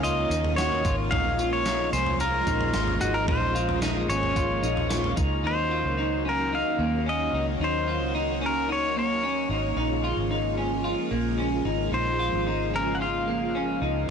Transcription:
0.00 0.28 C#2 medium
0.00 1.07 C#3 medium
0.00 5.40 A#3 medium
0.00 5.40 C#4 medium
0.00 1.08 D#4 medium
0.00 5.40 F4 medium
0.00 0.31 F4 medium
0.00 0.54 D#5 medium
0.04 tambourine medium
0.30 0.82 D#2 medium
0.30 0.58 D#4 medium
0.30 tambourine medium
0.45 floor tom medium
0.56 0.84 F#4 medium
0.56 0.95 C#5 medium
0.56 snare loud
0.56 tambourine medium
0.72 floor tom medium
0.85 1.12 G#1 medium
0.85 1.12 F4 medium
0.85 kick loud
0.85 tambourine medium
1.11 1.89 A#1 loud
1.11 5.41 F3 medium
1.11 5.41 G#3 medium
1.11 1.39 D#4 medium
1.11 1.53 F5 loud
1.11 kick loud
1.11 floor tom loud
1.39 1.66 F4 medium
1.39 tambourine medium
1.53 1.93 C#5 medium
1.66 1.93 D#4 medium
1.66 snare loud
1.66 tambourine medium
1.93 2.44 C2 medium
1.93 2.20 C#4 medium
1.93 2.21 C5 medium
1.93 tambourine medium
2.06 floor tom medium
2.20 2.47 F4 medium
2.20 2.97 A#4 medium
2.20 tambourine medium
2.47 2.73 A#1 medium
2.47 2.74 D#4 medium
2.47 kick medium
2.47 tambourine medium
2.61 floor tom medium
2.74 3.00 G#1 medium
2.74 3.01 F4 medium
2.74 snare loud
2.74 tambourine medium
2.87 floor tom medium
3.00 3.27 G#1 medium
3.00 3.27 D#4 medium
3.00 3.15 F#4 medium
3.00 tambourine medium
3.14 3.28 A#4 medium
3.28 4.05 A#1 loud
3.28 3.55 D#4 medium
3.28 3.79 C5 medium
3.28 kick loud
3.28 floor tom loud
3.55 3.82 F4 medium
3.55 tambourine medium
3.69 floor tom medium
3.82 4.09 D#4 medium
3.82 snare loud
3.82 tambourine medium
4.09 4.60 G#1 medium
4.09 4.36 C#4 medium
4.09 5.14 C#5 loud
4.09 tambourine medium
4.23 floor tom medium
4.36 4.63 F4 medium
4.36 kick medium
4.36 tambourine medium
4.63 5.15 A#1 medium
4.63 4.90 D#4 medium
4.63 tambourine medium
4.77 floor tom medium
4.90 5.17 F4 medium
4.90 snare loud
4.90 tambourine medium
5.04 floor tom medium
5.17 5.43 C#2 medium
5.17 5.43 D#4 medium
5.17 kick loud
5.17 tambourine medium
5.44 5.83 D#2 loud
5.44 9.73 D#3 medium
5.44 9.73 F#3 medium
5.44 14.05 A#3 medium
5.44 9.73 C#4 medium
5.44 5.71 D#4 medium
5.44 9.73 F#4 medium
5.44 6.23 C5 medium
5.71 5.98 F4 medium
5.84 6.62 C#2 medium
5.98 6.25 D#4 medium
6.25 6.52 C#4 medium
6.25 6.55 A#4 medium
6.52 6.80 D#4 medium
6.52 7.09 F5 loud
6.79 7.30 D#2 medium
6.79 7.06 A#3 medium
7.06 7.33 C#4 medium
7.06 7.46 D#5 loud
7.33 7.59 C#2 medium
7.33 7.60 D#4 medium
7.60 8.01 D#2 loud
7.60 7.88 D#4 loud
7.64 8.13 C5 medium
7.88 8.15 F4 medium
8.01 9.46 C#2 medium
8.15 8.41 D#4 medium
8.41 8.68 C#4 medium
8.46 8.72 A#4 medium
8.68 8.96 D#4 medium
8.68 8.98 C#5 loud
8.96 9.23 A#3 medium
8.96 9.48 C#5 loud
9.23 9.50 C#4 medium
9.49 9.75 G#1 medium
9.49 9.76 D#4 medium
9.76 10.15 A#1 loud
9.76 14.10 C#3 medium
9.76 14.05 F3 medium
9.76 14.05 G#3 medium
9.76 10.04 D#4 loud
9.76 14.05 F4 medium
10.04 10.31 F4 medium
10.17 10.94 G#1 medium
10.31 10.57 D#4 medium
10.57 10.85 C#4 medium
10.84 11.12 F4 medium
11.11 11.63 A#1 medium
11.11 11.39 A#3 medium
11.38 11.65 C#4 medium
11.65 11.91 G#1 medium
11.65 11.91 D#4 medium
11.92 12.31 A#1 loud
11.92 12.20 D#4 medium
11.92 12.75 C5 medium
12.19 12.47 F4 medium
12.33 13.78 G#1 medium
12.47 12.73 D#4 medium
12.74 13.01 C#4 medium
12.74 12.96 A#4 medium
12.95 13.02 F#5 medium
13.01 13.28 F4 medium
13.01 13.79 F5 medium
13.28 13.55 A#3 medium
13.55 13.81 C#4 medium
13.82 14.08 C#2 medium
13.82 14.08 D#4 medium

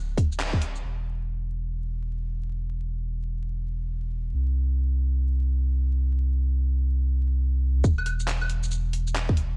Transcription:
0.00 0.82 D1 medium
0.18 kick loud
0.18 open hi-hat medium
0.32 shaker soft
0.40 clap loud
0.40 shaker medium
0.53 kick medium
0.62 open hi-hat medium
0.75 shaker soft
0.84 4.32 E1 medium
4.34 7.83 C2 medium
7.84 9.57 E1 medium
7.84 kick loud
7.84 shaker medium
7.98 claves medium
8.06 open hi-hat medium
8.06 claves medium
8.20 shaker medium
8.28 clap loud
8.28 shaker medium
8.41 claves medium
8.50 open hi-hat medium
8.63 shaker medium
8.71 shaker medium
8.93 open hi-hat medium
9.07 shaker soft
9.16 clap loud
9.16 shaker medium
9.29 kick loud
9.37 open hi-hat medium

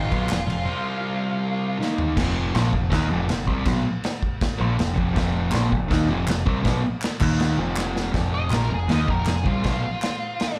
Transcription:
0.00 0.10 G#3 loud
0.00 1.77 F4 medium
0.11 0.29 B1 medium
0.11 0.28 B2 medium
0.11 0.29 F#3 loud
0.11 0.30 B3 loud
0.11 kick medium
0.11 ride medium
0.29 0.48 F1 medium
0.29 0.44 F2 medium
0.29 0.44 C3 medium
0.29 snare loud
0.29 clap medium
0.29 ride medium
0.47 0.67 F1 medium
0.47 0.63 F2 medium
0.47 0.63 C3 medium
0.47 ride medium
0.65 1.78 C3 loud
0.65 1.78 G3 loud
0.65 1.78 C4 loud
1.79 2.16 D#3 medium
1.79 2.17 A#3 medium
1.79 2.17 D#4 medium
1.79 snare medium
1.98 floor tom medium
2.17 2.52 F1 medium
2.17 2.55 F2 medium
2.17 2.53 C3 loud
2.17 2.53 F3 loud
2.17 kick loud
2.17 snare loud
2.17 crash loud
2.17 crash medium
2.54 2.72 A#1 loud
2.54 2.71 A#2 medium
2.54 2.73 F3 loud
2.54 2.73 A#3 loud
2.54 snare loud
2.54 crash medium
2.72 2.90 F1 medium
2.72 2.87 F2 medium
2.72 2.87 C3 medium
2.72 kick medium
2.90 3.10 D#2 loud
2.90 3.09 D#3 medium
2.90 3.09 A#3 loud
2.90 3.09 D#4 loud
2.90 kick loud
2.90 snare loud
2.90 crash medium
3.08 3.26 F2 medium
3.08 3.25 C3 loud
3.08 3.29 F3 loud
3.13 3.29 F1 loud
3.26 3.43 F2 medium
3.26 3.43 C3 medium
3.26 snare loud
3.26 crash medium
3.33 3.46 F1 medium
3.47 3.65 C2 medium
3.47 3.65 C3 medium
3.47 3.66 G3 loud
3.47 3.67 C4 loud
3.47 kick medium
3.65 3.83 B1 medium
3.65 3.84 B2 loud
3.65 3.84 F#3 loud
3.65 3.85 B3 loud
3.65 kick loud
3.65 snare loud
3.65 crash medium
4.04 snare loud
4.04 crash medium
4.23 kick medium
4.41 kick loud
4.41 snare loud
4.41 crash medium
4.58 4.78 A#1 medium
4.58 4.77 A#2 loud
4.58 4.77 F3 loud
4.58 4.78 A#3 loud
4.78 4.96 F1 medium
4.78 4.93 F2 medium
4.78 4.93 C3 medium
4.78 snare loud
4.78 crash medium
4.94 5.15 F1 loud
4.94 5.13 F2 loud
4.94 5.14 C3 loud
4.94 5.15 F3 loud
4.94 kick loud
5.14 5.51 F1 loud
5.14 5.52 F2 loud
5.14 5.51 C3 loud
5.14 5.51 F3 loud
5.14 kick loud
5.14 snare loud
5.14 crash medium
5.51 5.70 A#1 loud
5.51 5.70 A#2 loud
5.51 5.71 F3 loud
5.51 5.71 A#3 loud
5.51 snare loud
5.51 clap medium
5.51 crash medium
5.70 5.89 F1 medium
5.70 5.86 F2 medium
5.70 5.86 C3 medium
5.70 kick medium
5.88 6.08 D#2 loud
5.88 6.08 D#3 medium
5.88 6.09 A#3 loud
5.88 6.09 D#4 loud
5.88 kick loud
5.88 crash medium
5.92 snare loud
6.07 6.27 F1 medium
6.07 6.25 F2 medium
6.07 6.26 C3 loud
6.07 6.28 F3 loud
6.26 6.45 F1 medium
6.26 6.42 F2 medium
6.26 6.42 C3 medium
6.26 snare loud
6.26 clap medium
6.26 crash medium
6.45 6.64 C2 medium
6.45 6.61 C3 loud
6.45 6.63 G3 loud
6.45 6.63 C4 loud
6.45 kick medium
6.61 6.83 B1 medium
6.61 6.82 B2 loud
6.61 6.83 F#3 loud
6.61 6.83 B3 loud
6.61 kick loud
6.61 crash medium
6.66 snare loud
7.02 snare loud
7.02 clap loud
7.02 crash medium
7.20 7.56 D#2 medium
7.20 7.58 D#3 medium
7.20 7.58 A#3 loud
7.20 7.58 D#4 medium
7.20 kick loud
7.20 clap medium
7.20 crash loud
7.40 snare loud
7.40 crash medium
7.57 8.11 F1 medium
7.57 8.11 F2 medium
7.57 8.11 C3 medium
7.57 8.12 F3 loud
7.77 snare medium
7.77 clap loud
7.96 snare medium
8.12 8.49 F1 medium
8.12 8.50 F2 loud
8.12 8.50 C3 loud
8.12 8.49 F3 loud
8.12 kick loud
8.12 snare loud
8.12 crash medium
8.34 8.52 D#5 loud
8.50 8.68 A#1 loud
8.50 8.70 A#2 medium
8.50 8.70 F3 loud
8.50 8.71 A#3 medium
8.50 snare loud
8.50 clap medium
8.50 crash medium
8.54 8.72 A#4 medium
8.69 8.87 F1 medium
8.69 8.86 F2 medium
8.69 8.86 C3 medium
8.74 8.91 G#4 medium
8.87 9.06 D#2 medium
8.87 9.08 D#3 medium
8.87 9.08 A#3 loud
8.87 9.09 D#4 loud
8.87 snare loud
8.87 crash medium
8.92 9.09 D#5 loud
9.07 9.26 F1 medium
9.07 9.25 F2 medium
9.07 9.26 C3 medium
9.07 9.28 F3 loud
9.07 9.28 A#4 medium
9.07 kick loud
9.26 9.45 F1 medium
9.26 9.42 F2 medium
9.26 9.43 C3 medium
9.26 9.47 G#4 medium
9.26 snare loud
9.26 clap medium
9.26 crash medium
9.44 9.63 C2 medium
9.44 9.63 C3 medium
9.44 9.64 G3 loud
9.44 9.64 C4 loud
9.44 10.56 F4 medium
9.44 kick loud
9.64 9.83 B1 medium
9.64 9.83 B2 medium
9.64 9.84 F#3 loud
9.64 9.84 B3 loud
9.64 kick loud
9.64 snare loud
9.64 crash medium
10.02 snare loud
10.02 clap medium
10.02 crash medium
10.40 snare loud
10.40 crash medium

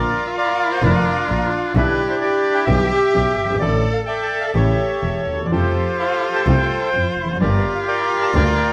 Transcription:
0.00 0.80 F4 medium
0.00 1.78 F4 loud
0.00 0.36 A#4 medium
0.00 0.26 D5 medium
0.26 0.31 E5 medium
0.38 0.83 A#4 medium
0.38 1.26 D5 medium
0.38 0.69 F5 loud
0.72 0.82 C5 medium
0.82 1.02 F1 medium
0.82 1.02 F1 loud
0.82 1.02 F2 medium
0.82 1.02 D3 medium
0.82 1.02 F3 medium
0.82 1.02 A#3 medium
0.82 1.72 D4 medium
0.82 1.02 F4 medium
0.82 1.72 F4 medium
0.82 1.49 A#4 medium
1.29 1.48 A#1 medium
1.29 1.48 A#2 medium
1.75 1.94 B1 loud
1.75 1.95 B1 medium
1.75 1.95 B2 loud
1.75 1.95 D3 medium
1.75 1.95 G3 medium
1.75 1.95 B3 medium
1.75 2.65 D4 medium
1.75 1.95 E4 medium
1.75 2.65 E4 medium
1.75 2.22 G4 loud
1.75 2.08 B4 medium
2.10 2.15 C5 medium
2.21 3.63 G4 loud
2.21 2.66 G4 medium
2.21 2.54 D5 medium
2.55 2.60 G5 loud
2.65 2.87 B1 medium
2.65 2.87 B2 medium
2.65 2.87 D3 medium
2.65 2.87 G3 medium
2.65 2.87 B3 medium
2.65 2.88 E4 medium
2.65 3.57 G4 medium
2.65 3.56 E5 loud
3.13 3.34 B1 medium
3.13 3.34 B2 medium
3.38 3.61 G1 medium
3.45 3.50 F#1 medium
3.50 3.56 G1 medium
3.55 3.61 G#1 medium
3.60 3.81 A1 medium
3.60 3.81 A2 medium
3.60 3.81 D3 medium
3.60 3.81 E3 medium
3.60 3.81 A3 medium
3.60 3.81 E4 medium
3.60 4.51 A4 medium
3.60 4.07 A4 medium
3.60 3.97 D5 medium
3.93 3.99 F5 medium
4.06 4.56 A4 medium
4.06 4.52 D5 medium
4.06 4.51 E5 medium
4.06 4.43 G5 medium
4.40 4.46 F5 medium
4.54 4.75 A1 medium
4.54 4.75 A2 medium
4.54 4.75 C#3 medium
4.54 4.75 E3 medium
4.54 4.75 A3 medium
4.54 4.75 E4 medium
4.54 5.26 G4 medium
4.54 5.47 A4 medium
4.54 5.47 C#5 medium
4.54 5.22 E5 medium
5.02 5.22 E1 soft
5.02 5.23 E1 medium
5.02 5.22 E2 medium
5.28 5.50 D#2 soft
5.32 5.38 D2 medium
5.39 5.45 D#2 medium
5.45 5.51 E2 medium
5.45 5.51 D5 soft
5.51 5.71 F2 medium
5.51 5.71 C3 medium
5.51 5.71 F3 medium
5.51 5.71 G3 medium
5.51 5.71 A3 medium
5.51 7.36 F4 medium
5.51 5.71 F4 medium
5.51 6.43 G4 medium
5.51 5.98 A4 medium
5.51 5.98 C5 medium
5.99 6.90 A4 medium
5.99 6.48 C5 medium
5.99 6.35 F5 medium
6.36 6.41 A5 loud
6.46 6.66 C2 loud
6.46 6.66 C2 medium
6.46 6.66 C3 medium
6.46 6.66 G3 medium
6.46 6.66 A3 medium
6.46 6.67 F4 medium
6.46 7.38 C5 medium
6.46 7.14 G5 medium
6.93 7.13 F2 medium
6.93 7.14 F2 medium
6.93 7.14 F3 medium
7.18 7.40 F1 soft
7.25 7.29 E2 soft
7.31 7.35 F2 medium
7.36 7.41 F#2 medium
7.40 7.60 G1 loud
7.40 7.60 G1 medium
7.40 7.60 G2 medium
7.40 7.60 D3 medium
7.40 7.60 G3 medium
7.40 7.60 A#3 medium
7.40 8.73 F4 loud
7.40 7.61 G4 medium
7.40 8.31 G4 medium
7.40 7.87 A#4 medium
7.40 7.73 D5 medium
7.75 7.80 F5 medium
7.88 8.34 A#4 medium
7.88 8.34 D5 medium
7.88 8.20 G5 medium
8.23 8.28 A5 loud
8.34 8.54 D2 loud
8.34 8.54 D2 medium
8.34 8.54 D3 medium
8.34 8.54 G3 medium
8.34 8.54 A#3 medium
8.34 8.54 G4 medium
8.34 8.73 A#4 medium
8.34 8.73 D5 medium
8.34 8.73 G5 loud

